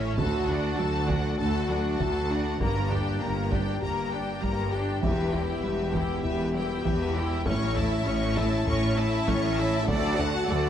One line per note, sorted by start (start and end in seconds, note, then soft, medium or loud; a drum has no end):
0.00 0.11 A1 medium
0.00 0.11 A2 medium
0.00 0.19 C#4 medium
0.00 0.19 E4 medium
0.00 0.18 C#5 medium
0.00 0.18 E5 medium
0.17 0.72 D2 medium
0.17 0.36 D3 loud
0.17 2.57 A3 medium
0.17 2.57 F#4 medium
0.17 0.47 F#4 medium
0.17 0.47 A4 medium
0.17 0.46 A5 medium
0.17 taiko loud
0.47 0.67 D4 medium
0.47 0.80 D4 medium
0.47 0.79 F#4 medium
0.47 0.78 F#5 medium
0.47 taiko low medium
0.77 1.32 D2 medium
0.77 0.97 F#3 medium
0.77 1.10 F#4 medium
0.77 1.09 A4 medium
0.77 1.08 A5 medium
1.08 1.27 D3 loud
1.08 1.40 D4 medium
1.08 1.39 F#4 medium
1.08 1.39 F#5 medium
1.08 taiko medium
1.39 1.93 D2 medium
1.39 1.58 D4 medium
1.39 1.68 F#4 medium
1.39 1.68 A4 medium
1.39 1.67 A5 medium
1.39 taiko low medium
1.69 1.87 F#3 medium
1.69 2.01 D4 medium
1.69 2.00 F#4 medium
1.69 2.00 F#5 medium
2.00 2.53 D2 medium
2.00 2.54 D2 medium
2.00 2.18 D3 loud
2.00 2.30 F#4 medium
2.00 2.31 A4 medium
2.00 2.31 A5 medium
2.00 taiko medium
2.30 2.49 D4 medium
2.30 2.61 D4 medium
2.30 2.61 F#4 medium
2.30 2.61 F#5 medium
2.60 3.14 G1 medium
2.60 3.14 G2 medium
2.60 2.79 G3 medium
2.60 2.89 A#3 medium
2.60 4.69 A#3 medium
2.60 7.42 G4 medium
2.60 2.88 A#4 medium
2.60 2.90 A#5 medium
2.60 taiko loud
2.91 3.22 D4 medium
2.91 3.21 G4 medium
2.91 3.10 G4 medium
2.91 3.21 G5 medium
2.91 taiko low medium
3.21 3.75 G1 medium
3.21 3.75 G2 medium
3.21 3.52 A#3 medium
3.21 3.40 A#3 medium
3.21 3.52 A#4 medium
3.21 3.52 A#5 medium
3.51 3.70 G3 loud
3.51 3.83 D4 medium
3.51 3.82 G4 medium
3.51 3.82 G5 medium
3.51 taiko medium
3.82 4.36 G1 medium
3.82 4.36 G2 medium
3.82 4.11 A#3 medium
3.82 4.00 G4 medium
3.82 4.10 A#4 medium
3.82 4.11 A#5 medium
3.82 taiko low medium
4.12 4.30 A#3 medium
4.12 4.43 D4 medium
4.12 4.42 G4 medium
4.12 4.42 G5 medium
4.42 4.96 G1 medium
4.42 4.96 G2 medium
4.42 4.60 G3 loud
4.42 4.73 A#3 medium
4.42 4.73 A#4 medium
4.42 4.73 A#5 medium
4.42 taiko medium
4.72 5.04 D4 medium
4.72 5.03 G4 medium
4.72 4.91 G4 medium
4.72 5.03 G5 medium
5.02 5.57 E1 medium
5.02 5.57 E2 medium
5.02 5.21 E3 loud
5.02 7.41 B3 medium
5.02 5.32 G4 medium
5.02 5.32 B4 medium
5.02 5.31 E5 medium
5.02 taiko loud
5.31 5.51 E4 medium
5.31 5.64 E4 medium
5.31 5.64 G4 medium
5.31 5.62 G5 medium
5.31 taiko low medium
5.62 6.17 E1 medium
5.62 6.17 E2 medium
5.62 5.82 G3 medium
5.62 5.94 G4 medium
5.62 5.94 B4 medium
5.62 5.93 E5 medium
5.93 6.12 E3 loud
5.93 6.25 E4 medium
5.93 6.24 G4 medium
5.93 6.24 G5 medium
5.93 taiko medium
6.23 6.78 E1 medium
6.23 6.78 E2 medium
6.23 6.42 E4 medium
6.23 6.52 G4 medium
6.23 6.54 B4 medium
6.23 6.52 E5 medium
6.23 taiko low medium
6.54 6.72 G3 medium
6.54 6.85 E4 medium
6.54 6.86 G4 medium
6.54 6.85 G5 medium
6.84 7.38 E1 medium
6.84 7.39 E2 medium
6.84 7.03 E3 loud
6.84 7.15 G4 medium
6.84 7.16 B4 medium
6.84 7.15 E5 medium
6.84 taiko medium
7.15 7.45 E4 medium
7.15 7.34 E4 medium
7.15 7.46 G4 medium
7.15 7.46 G5 medium
7.45 7.99 A1 loud
7.45 7.99 A2 medium
7.45 7.64 A3 loud
7.45 7.74 C#4 medium
7.45 9.89 C#4 medium
7.45 9.89 E4 medium
7.45 7.74 C#5 medium
7.45 7.75 C#6 medium
7.45 taiko loud
7.76 8.06 E4 medium
7.76 7.94 A4 medium
7.76 8.06 E5 medium
7.76 8.07 A5 medium
7.76 taiko low medium
8.06 8.59 A1 loud
8.06 8.60 A2 loud
8.06 8.36 C#4 medium
8.06 8.25 C#4 medium
8.06 8.37 C#5 medium
8.06 8.37 C#6 medium
8.36 8.55 A3 loud
8.36 8.67 E4 medium
8.36 8.68 E5 medium
8.36 8.68 A5 medium
8.36 taiko medium
8.66 9.20 A1 medium
8.66 9.20 A2 loud
8.66 8.95 C#4 medium
8.66 8.85 A4 medium
8.66 8.95 C#5 medium
8.66 8.95 C#6 medium
8.66 taiko low medium
8.97 9.16 C#4 medium
8.97 9.27 E4 medium
8.97 9.28 E5 medium
8.97 9.28 A5 medium
9.27 9.81 A1 loud
9.27 9.81 A2 loud
9.27 9.46 A3 loud
9.27 9.57 C#4 medium
9.27 9.58 C#5 medium
9.27 9.57 C#6 medium
9.27 taiko loud
9.57 9.88 E4 medium
9.57 9.76 A4 medium
9.57 9.89 E5 medium
9.57 9.88 A5 medium
9.86 10.41 D2 loud
9.86 10.42 D2 loud
9.86 10.06 D3 loud
9.86 10.69 A3 loud
9.86 10.69 F#4 loud
9.86 10.16 A4 medium
9.86 10.16 D5 loud
9.86 10.15 F#5 medium
9.86 taiko loud
10.18 10.37 D4 medium
10.18 10.48 F#4 medium
10.18 10.49 F#5 loud
10.18 10.49 A5 medium
10.18 taiko low medium
10.48 10.69 D2 loud
10.48 10.67 F#3 medium
10.48 10.69 A4 medium
10.48 10.69 D5 medium
10.48 10.69 F#5 medium